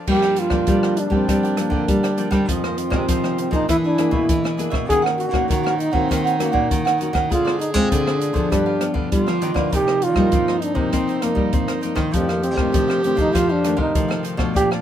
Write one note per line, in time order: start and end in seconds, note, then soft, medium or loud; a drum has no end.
0.07 0.65 G2 soft
0.07 0.48 F3 soft
0.07 0.49 G3 medium
0.07 0.48 A#3 medium
0.07 0.48 C4 medium
0.07 2.50 D4 loud
0.07 0.21 F4 soft
0.07 0.21 A#4 soft
0.07 0.21 D5 soft
0.07 0.21 G5 soft
0.07 kick medium
0.07 crash medium
0.11 0.41 G4 loud
0.22 0.36 A#4 medium
0.22 0.37 D5 medium
0.22 0.36 G5 medium
0.22 cross-stick medium
0.36 1.01 F4 medium
0.36 muted cavaquinho stroke soft
0.36 closed hi-hat soft
0.49 0.64 D3 medium
0.49 1.08 F3 medium
0.49 1.08 A#3 medium
0.49 1.08 C4 medium
0.49 0.66 A#4 medium
0.49 0.66 D5 medium
0.49 0.66 G5 medium
0.49 kick medium
0.49 cross-stick medium
0.66 1.25 D3 medium
0.66 1.06 G3 medium
0.66 0.81 F4 soft
0.66 0.81 A#4 soft
0.66 0.82 D5 medium
0.66 0.82 G5 medium
0.66 kick medium
0.66 closed hi-hat medium
0.83 0.96 A#4 medium
0.83 0.96 D5 medium
0.83 0.97 G5 medium
0.83 cross-stick medium
0.97 1.13 D4 medium
0.97 muted cavaquinho stroke soft
0.97 closed hi-hat soft
1.10 1.52 F3 medium
1.10 1.24 G3 medium
1.10 1.53 A#3 medium
1.10 1.53 C4 medium
1.10 1.27 A#4 soft
1.10 1.27 D5 medium
1.10 1.26 G5 medium
1.10 kick medium
1.14 1.56 C4 medium
1.28 1.86 G2 medium
1.28 1.67 G3 medium
1.28 1.42 F4 soft
1.28 1.42 A#4 soft
1.28 1.42 D5 soft
1.28 1.42 G5 medium
1.28 kick medium
1.28 cross-stick medium
1.28 closed hi-hat medium
1.43 1.72 A#4 medium
1.43 1.71 D5 medium
1.43 1.70 G5 medium
1.43 closed hi-hat soft
1.57 1.97 F3 medium
1.57 1.97 A#3 medium
1.57 2.15 A#3 medium
1.57 1.97 C4 medium
1.57 cross-stick medium
1.57 closed hi-hat soft
1.70 1.84 D3 medium
1.70 2.02 A#4 medium
1.70 2.02 D5 medium
1.70 2.01 G5 medium
1.70 kick medium
1.88 2.45 D3 soft
1.88 2.27 G3 medium
1.88 kick medium
1.88 closed hi-hat medium
2.03 2.16 A#4 soft
2.03 2.17 D5 medium
2.03 2.17 G5 medium
2.03 cross-stick medium
2.03 closed hi-hat soft
2.17 2.28 F3 medium
2.17 2.28 A#3 soft
2.17 2.28 C4 medium
2.17 2.32 F4 soft
2.17 2.31 A#4 soft
2.17 2.30 D5 medium
2.17 2.30 G5 medium
2.17 closed hi-hat soft
2.31 2.88 D#3 medium
2.31 2.49 G3 medium
2.31 2.88 G#3 medium
2.31 2.88 C4 medium
2.31 2.47 A#4 medium
2.31 2.47 D5 medium
2.31 2.46 G5 medium
2.31 kick medium
2.31 cross-stick medium
2.31 closed hi-hat soft
2.47 3.06 F2 medium
2.47 2.94 F3 medium
2.47 2.63 C4 medium
2.47 2.62 F4 soft
2.47 3.71 F4 loud
2.47 2.62 G#4 soft
2.47 2.62 C5 soft
2.47 2.63 D#5 soft
2.47 kick medium
2.47 closed hi-hat medium
2.64 2.80 A#3 medium
2.64 2.77 G#4 medium
2.64 2.77 C5 medium
2.64 2.77 D#5 medium
2.64 cross-stick medium
2.78 3.39 C4 medium
2.78 muted cavaquinho stroke soft
2.78 closed hi-hat soft
2.90 3.05 C3 medium
2.90 3.48 D#3 medium
2.90 3.48 G#3 medium
2.90 3.49 C4 medium
2.90 3.08 G#4 medium
2.90 3.07 C5 medium
2.90 3.07 D#5 medium
2.90 kick medium
2.90 cross-stick medium
3.08 3.66 C3 medium
3.08 3.47 F3 medium
3.08 3.23 F4 soft
3.08 3.23 G#4 medium
3.08 3.23 C5 medium
3.08 3.22 D#5 medium
3.08 kick medium
3.08 closed hi-hat medium
3.24 3.37 G#4 medium
3.24 3.38 C5 medium
3.24 3.38 D#5 medium
3.24 cross-stick medium
3.38 3.53 C4 medium
3.38 muted cavaquinho stroke soft
3.38 closed hi-hat soft
3.51 3.65 F3 medium
3.51 3.93 A#3 medium
3.51 3.94 D4 medium
3.51 3.68 D#4 medium
3.51 3.94 G#4 medium
3.51 3.68 G#4 medium
3.51 3.68 C5 medium
3.51 3.67 D#5 medium
3.51 kick medium
3.51 closed hi-hat soft
3.68 4.07 E3 medium
3.68 4.27 E3 medium
3.68 3.83 D4 medium
3.68 4.63 E4 loud
3.68 3.77 E4 loud
3.68 3.83 G#4 soft
3.68 3.83 B4 soft
3.68 3.83 E5 medium
3.68 kick medium
3.68 cross-stick medium
3.68 closed hi-hat medium
3.84 4.13 D4 medium
3.84 4.12 G#4 medium
3.84 4.11 B4 medium
3.84 4.10 E5 medium
3.98 4.54 A#3 medium
3.98 4.54 D4 medium
3.98 4.55 G#4 medium
3.98 cross-stick medium
3.98 closed hi-hat soft
4.11 4.25 B2 medium
4.11 4.57 E4 medium
4.11 4.43 G#4 medium
4.11 4.42 B4 medium
4.11 4.42 E5 medium
4.11 kick medium
4.29 4.87 B2 medium
4.29 4.68 E3 medium
4.29 kick medium
4.29 closed hi-hat medium
4.44 4.56 G#4 medium
4.44 4.57 B4 medium
4.44 4.57 E5 medium
4.44 cross-stick medium
4.57 4.84 A#3 medium
4.57 4.72 D4 medium
4.57 4.85 D4 medium
4.57 4.71 G#4 medium
4.57 4.85 G#4 medium
4.57 4.70 B4 medium
4.57 4.69 E5 medium
4.57 closed hi-hat soft
4.70 4.90 B2 medium
4.70 4.87 G#4 medium
4.70 4.87 B4 medium
4.70 4.86 E5 medium
4.70 kick medium
4.70 cross-stick medium
4.87 5.47 D#3 medium
4.87 5.32 D#3 medium
4.87 5.30 A#3 medium
4.87 5.31 C#4 medium
4.87 5.02 D#4 soft
4.87 7.33 D#4 loud
4.87 5.03 G#4 loud
4.87 5.03 A#4 soft
4.87 5.02 C#5 soft
4.87 5.01 F#5 soft
4.87 kick medium
4.87 closed hi-hat medium
4.91 5.31 F#4 medium
5.02 5.17 A#4 medium
5.02 5.17 C#5 medium
5.02 5.17 F#5 medium
5.06 cross-stick medium
5.18 5.75 F#4 medium
5.18 muted cavaquinho stroke soft
5.18 closed hi-hat soft
5.31 5.46 A#2 medium
5.31 5.90 A#3 medium
5.31 5.90 C#4 medium
5.31 5.90 F#4 medium
5.31 5.47 A#4 medium
5.31 5.47 C#5 medium
5.31 5.47 F#5 medium
5.31 kick medium
5.31 cross-stick medium
5.48 6.07 A#2 medium
5.48 5.89 D#3 medium
5.48 5.63 D#4 medium
5.48 5.63 A#4 medium
5.48 5.63 C#5 medium
5.48 5.62 F#5 medium
5.48 kick medium
5.48 closed hi-hat medium
5.63 5.78 A#4 medium
5.63 5.78 C#5 medium
5.63 5.78 F#5 medium
5.63 cross-stick medium
5.78 5.95 D#4 medium
5.78 muted cavaquinho stroke soft
5.78 closed hi-hat soft
5.91 6.07 D#3 medium
5.91 6.35 A#3 medium
5.91 6.40 C4 medium
5.91 6.36 F#4 medium
5.91 6.08 A#4 soft
5.91 6.08 C#5 medium
5.91 6.07 F#5 medium
5.91 kick medium
6.08 6.49 D#3 medium
6.08 6.68 D#3 medium
6.08 6.23 D#4 soft
6.08 6.24 A#4 medium
6.08 6.24 C#5 medium
6.08 6.23 F#5 medium
6.08 kick medium
6.08 cross-stick medium
6.08 closed hi-hat medium
6.24 6.52 A#4 medium
6.24 6.51 C#5 medium
6.24 6.51 F#5 medium
6.24 closed hi-hat soft
6.39 6.79 A#3 medium
6.39 6.97 A#3 medium
6.39 6.79 C#4 medium
6.39 6.79 F#4 medium
6.39 cross-stick medium
6.39 closed hi-hat soft
6.52 6.67 A#2 medium
6.52 6.84 A#4 medium
6.52 6.83 C#5 medium
6.52 6.83 F#5 medium
6.52 kick medium
6.71 7.28 A#2 medium
6.71 7.10 D#3 medium
6.71 kick medium
6.71 closed hi-hat medium
6.85 6.97 A#4 medium
6.85 6.98 C#5 medium
6.85 6.99 F#5 medium
6.85 cross-stick medium
6.85 closed hi-hat soft
6.98 7.26 A#3 medium
6.98 7.26 C#4 soft
6.98 7.13 D#4 medium
6.98 7.27 F#4 medium
6.98 7.13 A#4 medium
6.98 7.12 C#5 medium
6.98 7.12 F#5 medium
6.98 closed hi-hat soft
7.13 7.31 D#3 medium
7.13 7.29 A#4 medium
7.13 7.29 C#5 medium
7.13 7.28 F#5 medium
7.13 kick medium
7.13 cross-stick medium
7.13 closed hi-hat soft
7.29 7.88 D3 medium
7.29 7.74 D3 medium
7.29 7.59 G#3 medium
7.29 7.59 C4 medium
7.29 7.44 F4 soft
7.29 7.60 F4 medium
7.29 7.59 F4 loud
7.29 7.44 G#4 soft
7.29 8.52 G#4 loud
7.29 7.44 C5 soft
7.29 7.43 D5 soft
7.29 kick medium
7.29 closed hi-hat medium
7.45 7.58 G#4 medium
7.45 7.59 C5 medium
7.45 7.59 D5 medium
7.45 cross-stick medium
7.59 7.73 D#4 medium
7.59 muted cavaquinho stroke soft
7.59 closed hi-hat medium
7.74 7.88 G#3 medium
7.74 8.31 G#3 medium
7.74 8.20 C4 medium
7.74 8.32 C4 medium
7.74 8.31 F4 medium
7.74 7.90 G#4 medium
7.74 7.89 C5 medium
7.74 7.89 D5 medium
7.74 kick medium
7.74 cross-stick medium
7.90 8.49 D3 soft
7.90 8.30 D3 medium
7.90 8.05 F4 soft
7.90 8.05 G#4 medium
7.90 8.05 C5 medium
7.90 8.05 D5 medium
7.90 kick medium
7.90 closed hi-hat medium
8.06 8.19 G#4 medium
8.06 8.20 C5 medium
8.06 8.20 D5 medium
8.06 cross-stick medium
8.19 9.41 D4 medium
8.19 muted cavaquinho stroke soft
8.19 closed hi-hat soft
8.33 8.48 D3 medium
8.33 8.76 F3 medium
8.33 8.77 B3 medium
8.33 8.49 G#4 soft
8.33 8.49 C5 medium
8.33 8.49 D5 medium
8.33 kick medium
8.33 closed hi-hat soft
8.50 8.90 G2 medium
8.50 9.10 G2 medium
8.50 8.65 D4 soft
8.50 8.65 G4 soft
8.50 8.85 G4 loud
8.50 8.65 B4 medium
8.50 8.65 F5 medium
8.50 kick medium
8.50 cross-stick medium
8.50 closed hi-hat medium
8.66 8.94 G4 soft
8.66 8.93 B4 medium
8.66 8.93 F5 medium
8.81 9.37 F3 medium
8.81 9.38 B3 medium
8.81 cross-stick medium
8.81 closed hi-hat soft
8.94 9.08 D3 medium
8.94 9.25 G4 medium
8.94 9.25 B4 medium
8.94 9.24 F5 medium
8.94 kick medium
9.12 9.69 D3 medium
9.12 9.25 G3 medium
9.12 9.74 F4 loud
9.12 kick medium
9.12 closed hi-hat medium
9.27 9.41 F3 medium
9.27 9.41 G4 soft
9.27 9.41 B4 medium
9.27 9.41 F5 medium
9.27 cross-stick medium
9.41 9.54 D#3 medium
9.41 9.51 F3 medium
9.41 9.51 B3 soft
9.41 9.56 D4 medium
9.41 9.51 D#4 medium
9.41 9.56 G4 soft
9.41 9.55 B4 soft
9.41 9.54 F5 medium
9.41 closed hi-hat soft
9.54 9.73 D3 medium
9.54 10.12 F3 medium
9.54 10.13 A#3 medium
9.54 10.13 D#4 medium
9.54 9.71 G4 medium
9.54 9.71 B4 medium
9.54 9.70 F5 medium
9.54 kick medium
9.54 cross-stick medium
9.72 10.15 C3 medium
9.72 10.30 C3 medium
9.72 9.86 D#4 soft
9.72 12.16 D#4 loud
9.72 10.05 G4 loud
9.72 9.87 A#4 soft
9.72 9.87 C5 soft
9.72 9.86 D#5 medium
9.72 kick medium
9.72 closed hi-hat medium
9.87 10.01 A#4 soft
9.87 10.01 C5 medium
9.87 10.01 D#5 medium
9.87 cross-stick medium
10.02 10.65 F4 loud
10.02 muted cavaquinho stroke soft
10.02 closed hi-hat soft
10.15 10.73 F3 medium
10.15 10.29 G3 medium
10.15 10.73 A#3 medium
10.15 10.73 D#4 medium
10.15 10.31 A#4 medium
10.15 10.31 C5 medium
10.15 10.31 D#5 medium
10.15 kick medium
10.15 cross-stick medium
10.32 10.91 G2 medium
10.32 10.71 C4 medium
10.32 10.46 D#4 soft
10.32 10.47 A#4 medium
10.32 10.47 C5 medium
10.32 10.47 D#5 medium
10.32 kick medium
10.32 closed hi-hat medium
10.48 10.62 A#4 medium
10.48 10.61 C5 soft
10.48 10.62 D#5 medium
10.48 cross-stick medium
10.62 10.78 D4 medium
10.62 muted cavaquinho stroke soft
10.62 closed hi-hat soft
10.75 10.89 C3 medium
10.75 11.18 F3 medium
10.75 11.18 A#3 medium
10.75 11.24 C4 medium
10.75 11.18 D#4 medium
10.75 10.91 A#4 medium
10.75 10.91 C5 medium
10.75 10.90 D#5 medium
10.75 kick medium
10.92 11.51 C3 medium
10.92 11.32 C4 medium
10.92 11.07 D#4 soft
10.92 11.07 A#4 medium
10.92 11.07 C5 soft
10.92 11.06 D#5 medium
10.92 kick medium
10.92 cross-stick medium
10.92 closed hi-hat medium
11.07 11.36 A#4 soft
11.07 11.35 C5 medium
11.07 11.34 D#5 medium
11.07 closed hi-hat soft
11.22 11.79 F3 medium
11.22 11.84 A#3 medium
11.22 11.80 A#3 medium
11.22 11.80 D#4 medium
11.22 cross-stick medium
11.22 closed hi-hat soft
11.35 11.49 G3 medium
11.35 11.67 A#4 medium
11.35 11.66 C5 medium
11.35 11.66 D#5 medium
11.35 kick medium
11.53 12.11 G2 medium
11.53 11.92 C4 medium
11.53 kick medium
11.53 closed hi-hat medium
11.68 11.80 A#4 medium
11.68 11.81 C5 medium
11.68 11.82 D#5 medium
11.68 cross-stick medium
11.68 closed hi-hat soft
11.81 12.09 F3 medium
11.81 12.10 A#3 medium
11.81 11.96 D#4 medium
11.81 12.10 D#4 medium
11.81 11.96 A#4 soft
11.81 11.95 C5 medium
11.81 11.94 D#5 medium
11.81 closed hi-hat soft
11.95 12.14 D#3 medium
11.95 12.12 A#4 medium
11.95 12.11 C5 medium
11.95 12.11 D#5 medium
11.95 kick medium
11.95 cross-stick medium
11.95 closed hi-hat soft
12.12 12.72 F2 medium
12.12 12.43 D#3 medium
12.12 12.56 F3 loud
12.12 12.29 C4 medium
12.12 12.27 D#4 soft
12.12 14.29 G4 loud
12.12 12.27 A4 soft
12.12 12.27 C5 soft
12.12 12.28 F5 soft
12.12 kick medium
12.12 closed hi-hat medium
12.16 12.43 A3 soft
12.16 12.43 D4 medium
12.29 12.43 A#3 medium
12.29 12.42 A4 soft
12.29 12.42 C5 medium
12.29 12.42 F5 medium
12.29 cross-stick medium
12.42 13.00 C4 medium
12.42 muted cavaquinho stroke soft
12.42 closed hi-hat soft
12.56 12.70 C3 medium
12.56 12.99 D#3 medium
12.56 12.99 A3 medium
12.56 12.99 D4 medium
12.56 12.71 A4 soft
12.56 12.72 C5 medium
12.56 12.72 F5 medium
12.56 kick medium
12.56 cross-stick medium
12.72 13.32 C3 soft
12.72 13.13 F3 medium
12.72 12.87 D#4 soft
12.72 12.88 A4 medium
12.72 12.88 C5 medium
12.72 12.87 F5 medium
12.72 kick medium
12.72 closed hi-hat medium
12.88 13.02 A4 soft
12.88 13.02 C5 medium
12.88 13.02 F5 medium
12.88 cross-stick medium
13.03 13.44 D#3 medium
13.03 13.44 A3 medium
13.03 13.19 C4 medium
13.03 13.44 D4 medium
13.03 muted cavaquinho stroke soft
13.03 closed hi-hat medium
13.16 13.31 F3 medium
13.16 13.32 A4 medium
13.16 13.32 C5 medium
13.16 13.32 F5 medium
13.16 kick medium
13.16 closed hi-hat soft
13.20 13.37 D#4 loud
13.32 13.92 F2 medium
13.32 13.73 F3 medium
13.32 13.48 D#4 soft
13.32 13.54 F4 loud
13.32 13.48 A4 medium
13.32 13.48 C5 medium
13.32 13.48 F5 medium
13.32 kick medium
13.32 cross-stick medium
13.32 closed hi-hat medium
13.49 13.80 D4 medium
13.49 13.76 A4 medium
13.49 13.76 C5 medium
13.49 13.75 F5 medium
13.64 13.90 D#3 medium
13.64 13.91 A3 medium
13.64 13.91 D4 medium
13.64 cross-stick medium
13.64 closed hi-hat medium
13.77 13.91 C3 medium
13.77 14.08 A4 medium
13.77 14.08 C5 medium
13.77 14.07 F5 medium
13.77 kick medium
13.81 14.23 D#4 medium
13.95 14.53 C3 medium
13.95 14.36 D#3 medium
13.95 14.34 F3 medium
13.95 14.36 A3 medium
13.95 kick medium
13.95 closed hi-hat medium
14.08 14.22 A4 medium
14.08 14.23 C5 medium
14.08 14.23 F5 medium
14.08 cross-stick medium
14.23 14.38 D#4 medium
14.23 14.38 A4 soft
14.23 14.38 C5 soft
14.23 14.37 F5 medium
14.23 closed hi-hat soft
14.37 14.56 B2 medium
14.37 14.81 F3 medium
14.37 14.81 A3 medium
14.37 14.54 A4 medium
14.37 14.54 C5 medium
14.37 14.54 F5 medium
14.37 kick medium
14.37 cross-stick medium
14.41 14.81 D4 medium
14.54 14.81 A#2 loud
14.54 14.81 A#2 medium
14.54 14.81 F4 loud
14.54 14.70 G4 loud
14.54 14.69 A#4 soft
14.54 14.69 D5 soft
14.54 14.70 F5 soft
14.54 14.70 A5 medium
14.54 kick medium
14.54 closed hi-hat medium
14.71 14.81 D5 medium
14.71 14.81 F5 medium
14.71 14.81 A5 medium
14.71 cross-stick medium